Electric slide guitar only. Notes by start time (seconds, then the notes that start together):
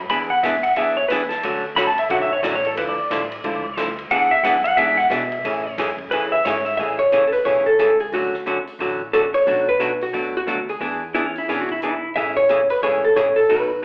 0.10 B5
0.30 F#5
0.43 E5
0.63 F#5
0.77 E5
0.97 C#5
1.08 B4
1.29 A4
1.76 B5
1.87 A5
1.99 E5
2.11 F#5
2.22 E5
2.33 C#5
2.44 D5
2.55 C#5
2.67 A4
2.78 B4
2.89 D5
4.11 F#5
4.31 E5
4.44 F#5
4.64 F#5
4.77 E5
4.97 F#5
5.11 E5
6.11 B4
6.32 E5
6.45 C#5
6.65 E5
11.14 E4
11.26 C#4
11.38 E4
11.50 C#4
11.61 F#4
11.72 E4
11.83 E4